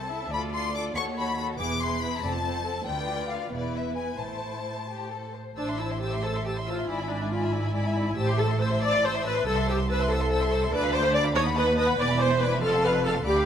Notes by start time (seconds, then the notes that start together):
Already playing: C2 A4 C5 A5
0.01 C4
0.11 E4 E5
0.22 C4
0.31 D2 F4 A4 D5 B5
0.54 F4 A4 C6
0.76 F4 A4 D6
0.94 D#2 F#4 A4 C#5 C#6
1.18 F#4 A4 B5
1.38 F#4 A4 B5
1.58 E1 E2 E4 G#4 B4 D6
1.81 E4 G#4 C6
2.01 E4 G#4 B5
2.21 F1 F2 C4 A4 D5 A5
2.43 C4 A4 C5
2.63 C4 A4
2.85 D2 F4 B4 D5 G5
3.29 F5
3.51 E1 E2 E4 B4 D5
3.74 E5
3.97 G#5
4.18 A1 A2 E4 C5 A5
4.89 G4
5.11 A4
5.34 C5
5.55 A1 A2 D4 C5 A5 E6
5.68 E5 C6
5.79 E4 C5 A5 E6
5.90 E5 C6
6.00 G4 C5 A5 E6
6.12 E5 C6
6.23 A4 C5 A5 E6
6.35 E5 C6
6.44 G4 C5 A5 E6
6.57 E5 C6
6.67 F4 C5 A5 E6
6.78 E5 C6
6.87 G#1 G#2 E4 D5 G#5 B5
6.99 E5 G#5 B5
7.09 D4 D5 G#5 B5
7.20 E5 G#5 B5
7.31 F4 D5 G#5 B5
7.42 E5 G#5 B5
7.52 E4 D5 G#5 B5
7.64 E5 G#5 B5
7.74 D5 G#5 B5
7.85 E5 G#5 B5
7.95 D5 G#5 B5
8.07 E5 G#5 B5
8.17 A1 A2 G4 C5 A5 E6
8.28 E5 C6
8.38 A4 C5 A5 E6
8.49 E5 C6
8.59 C5 A5 E6
8.70 E5 C6
8.81 C5 D5 A5 E6
8.92 E5 C6
9.04 C5 A5 E6
9.14 E5 C6
9.24 B4 C5 A5 E6
9.36 E5 C6
9.45 C2 A4 C5 A5 E6
9.55 E5 C6
9.66 G4 C5 A5 E6
9.78 E5 C6
9.88 B4 C5 A5 E6
10.00 E5 C6
10.10 A4 C5 A5 E6
10.21 E5 C6
10.31 C5 A5 E6
10.41 E5 C6
10.52 C5 A5 E6
10.63 E5 C6
10.72 D2 B4 D5 A5 D6
10.82 F5 B5
10.91 C5 D5 A5
10.95 D6
11.01 F5 B5
11.11 D5 A5
11.15 D6
11.22 F5 B5
11.27 B5
11.34 D#2 C#5 D#5 A5 D#6
11.45 F#5 B5
11.56 B4 D#5 A5 D#6
11.66 F#5 B5
11.77 B4 D#5 A5 D#6
11.86 F#5 B5
11.98 E1 E2 D5 G#5 D6
12.10 E5 B5
12.20 C5 D5 G#5 D6
12.30 E5 B5
12.41 B4 D5 G#5 D6
12.52 E5 B5
12.61 F1 F2 A4 F5 A5 F6
12.73 F5 A5 C6
12.83 B4 F5 A5 F6
12.93 F5 A5 C6
13.04 A4 F5 A5 F6
13.14 F5 A5 C6
13.24 D2 G4 D5 B5 D6
13.36 F5 B5 D6